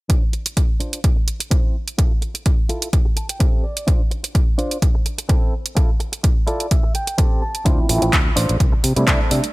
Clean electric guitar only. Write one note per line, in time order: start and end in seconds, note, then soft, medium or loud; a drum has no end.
0.09 0.22 D4 loud
0.09 0.22 F4 medium
0.09 0.22 C5 loud
0.33 muted clean electric guitar stroke medium
0.46 muted clean electric guitar stroke soft
0.57 muted clean electric guitar stroke soft
0.80 0.98 D4 medium
0.80 0.99 F4 medium
0.80 0.99 C5 medium
1.16 muted clean electric guitar stroke loud
1.27 muted clean electric guitar stroke soft
1.40 muted clean electric guitar stroke soft
1.51 1.75 C4 medium
1.51 1.75 E4 medium
1.51 1.75 C5 medium
1.98 2.11 E4 loud
1.98 2.11 F4 loud
1.98 2.11 A4 loud
2.22 muted clean electric guitar stroke medium
2.34 muted clean electric guitar stroke soft
2.46 muted clean electric guitar stroke soft
2.69 2.88 E4 medium
2.69 2.88 F4 medium
2.69 2.88 A4 medium
3.05 muted clean electric guitar stroke loud
3.16 3.29 A5 medium
3.16 muted clean electric guitar stroke soft
3.29 3.40 G5 medium
3.29 muted clean electric guitar stroke soft
3.40 3.64 C4 medium
3.40 3.64 G4 medium
3.40 3.64 A4 medium
3.40 3.62 E5 medium
3.64 3.86 D5 medium
3.87 4.00 D4 loud
3.87 4.00 F4 medium
3.87 4.00 C5 loud
4.11 muted clean electric guitar stroke medium
4.24 muted clean electric guitar stroke soft
4.35 muted clean electric guitar stroke soft
4.58 4.76 D4 medium
4.58 4.77 F4 medium
4.58 4.77 C5 medium
4.95 muted clean electric guitar stroke loud
5.05 muted clean electric guitar stroke soft
5.18 muted clean electric guitar stroke soft
5.29 5.53 C4 medium
5.29 5.53 E4 medium
5.29 5.53 A4 medium
5.76 5.89 E4 loud
5.76 5.89 F4 loud
5.76 5.89 A4 loud
6.00 muted clean electric guitar stroke medium
6.12 muted clean electric guitar stroke soft
6.23 muted clean electric guitar stroke soft
6.47 6.65 E4 medium
6.47 6.66 F4 medium
6.47 6.66 A4 medium
6.47 6.69 D5 medium
6.71 6.93 E5 medium
6.83 muted clean electric guitar stroke loud
6.94 7.17 G5 medium
6.94 muted clean electric guitar stroke soft
7.07 muted clean electric guitar stroke soft
7.18 7.42 C4 medium
7.18 7.42 G4 medium
7.18 7.42 A4 medium
7.42 7.64 A5 medium
7.65 7.78 D4 loud
7.65 7.78 F4 medium
7.65 7.78 C5 loud
7.89 muted clean electric guitar stroke medium
8.02 muted clean electric guitar stroke soft
8.13 muted clean electric guitar stroke soft
8.36 8.55 D4 medium
8.36 8.55 F4 medium
8.36 8.55 C5 medium
8.72 muted clean electric guitar stroke loud
8.83 muted clean electric guitar stroke soft
8.96 muted clean electric guitar stroke soft
9.07 9.31 C4 medium
9.07 9.31 E4 medium
9.07 9.31 A4 medium